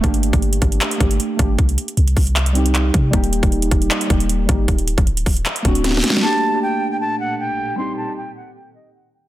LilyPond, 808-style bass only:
\new Staff \with { instrumentName = "808-style bass" } { \clef bass \time 4/4 \key g \minor \tempo 4 = 155 g,,8. g,,8. g,,8 r8 g,,8 r8 g,,8 | c,8 r8 c,8 c,2 c8 | ees,,8. ees,,8. ees,,8 r8 ees,,4 g,,8 | d,,8. d,,16 d,,8 d,,8 r8 d,,4 r8 |
r1 | r1 | }